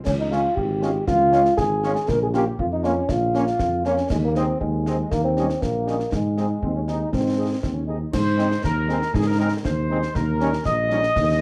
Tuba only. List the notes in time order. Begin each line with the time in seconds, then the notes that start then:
0.06 C#2
0.57 G#1
1.07 C#2
1.57 G#1
2.08 A#1
2.59 F2
3.09 A#1
3.59 F2
4.10 D#2
4.61 D#2
5.11 D#2
5.62 A#1
6.12 G#2
6.62 D#2
7.12 G#2
7.63 D#2
8.13 G#2
8.63 D#2
9.14 G#2
9.64 D#2
10.15 D#2
10.66 A#1
11.16 D#2